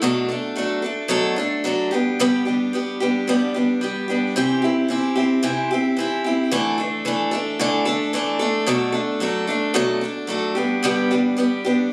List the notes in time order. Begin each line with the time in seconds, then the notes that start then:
0.02 B2 F#3 A3 D4 A4
0.28 A3 D4 A4
0.56 F#3 A3 D4 A4
0.82 A3 D4 A4
1.08 B2 F#3 A3 D4 A4
1.36 A3 D4 A4
1.64 F#3 A3 D4 A4
1.91 G3 B3 D4 G4
2.20 G2 D3 G3 B3 D4 G4
2.45 G3 B3 D4 G4
2.73 G3 B3 D4 G4
3.00 G3 B3 D4 G4
3.27 G2 D3 G3 B3 D4 G4
3.54 G3 B3 D4 G4
3.81 G3 B3 D4 G4
4.08 G3 B3 D4 G4
4.36 C3 E3 C4 E4 G4
4.62 C4 E4 G4
4.88 E3 C4 E4 G4
5.16 C4 E4 G4
5.43 C3 E3 C4 E4 G4
5.71 C4 E4 G4
5.97 E3 C4 E4 G4
6.24 C4 E4 G4
6.51 D3 E3 A3 D4 A4
6.78 A3 D4 A4
7.05 E3 A3 D4 A4
7.31 A3 D4 A4
7.59 D3 E3 A3 D4 A4
7.85 A3 D4 A4
8.13 E3 A3 D4 A4
8.39 A3 D4 A4
8.67 B2 F#3 A3 D4 A4
8.92 A3 D4 A4
9.20 F#3 A3 D4 A4
9.47 A3 D4 A4
9.74 B2 F#3 A3 D4 A4
10.01 A3 D4 A4
10.27 F#3 A3 D4 A4
10.55 G3 B3 D4 G4
10.83 G2 D3 G3 B3 D4 G4
11.11 G3 B3 D4 G4
11.37 G3 B3 D4 G4
11.65 G3 B3 D4 G4